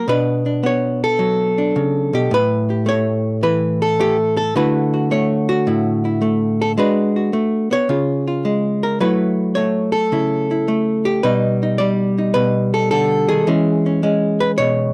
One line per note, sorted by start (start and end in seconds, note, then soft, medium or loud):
0.08 1.75 B2 medium
0.08 0.63 B3 soft
0.08 0.45 D4 soft
0.08 0.64 B4 medium
0.46 1.57 D4 soft
0.63 2.34 B3 medium
0.63 1.03 C#5 medium
1.04 2.32 A4 medium
1.19 2.73 F#3 medium
1.58 2.29 D4 soft
1.76 2.13 C#3 medium
2.13 2.31 B2 medium
2.13 2.31 G4 medium
2.31 4.54 A2 medium
2.31 2.88 B4 loud
2.70 3.99 G4 soft
2.86 3.98 A3 medium
2.86 3.43 C#5 medium
3.43 4.52 E3 medium
3.43 3.81 B4 loud
3.82 4.36 A4 medium
4.00 4.52 A3 medium
4.00 4.16 G4 medium
4.37 4.54 A4 medium
4.56 6.78 D3 medium
4.56 5.10 A3 medium
4.56 5.66 E4 medium
4.56 4.92 F#4 soft
4.56 5.11 B4 medium
4.94 5.48 F#4 soft
5.11 6.20 A3 medium
5.11 6.04 C#5 medium
5.49 6.77 F#4 medium
5.67 6.78 A2 medium
5.67 6.04 E4 soft
6.05 6.75 E4 soft
6.22 6.75 A3 medium
6.62 6.71 A4 medium
6.78 7.33 G#3 medium
6.78 7.87 D4 soft
6.78 7.15 F#4 soft
6.78 7.72 B4 medium
7.16 7.87 F#4 soft
7.33 7.71 A3 medium
7.71 7.89 B3 medium
7.71 8.83 C#5 medium
7.89 8.98 C#3 medium
7.89 8.26 F4 soft
8.28 8.98 F4 soft
8.45 8.98 G#3 medium
8.83 9.00 A#4 medium
9.00 11.21 F#3 medium
9.00 9.56 A3 soft
9.00 10.12 E4 soft
9.00 9.55 B4 medium
9.55 10.67 A3 medium
9.55 9.92 C#5 medium
9.92 11.22 A4 medium
10.12 11.21 C#3 medium
10.12 10.50 E4 soft
10.51 11.22 E4 soft
10.68 11.21 A3 medium
11.05 11.23 G4 medium
11.23 12.34 B2 medium
11.23 11.79 G3 medium
11.23 11.62 D#4 soft
11.23 11.78 B4 medium
11.63 12.17 D#4 soft
11.78 13.47 G3 medium
11.78 12.33 D5 loud
12.18 13.45 D#4 soft
12.34 13.44 B2 medium
12.34 12.72 B4 loud
12.74 12.90 A4 medium
12.91 13.29 D3 medium
12.91 13.46 A4 loud
13.29 13.47 D#3 medium
13.29 14.94 G#4 medium
13.47 14.94 E3 medium
13.47 14.02 G#3 medium
13.47 13.85 C#4 medium
13.86 14.02 C#4 soft
14.03 14.94 G#3 medium
14.03 14.94 C#4 soft
14.40 14.51 B4 medium
14.58 14.94 B2 medium
14.58 14.94 C#5 loud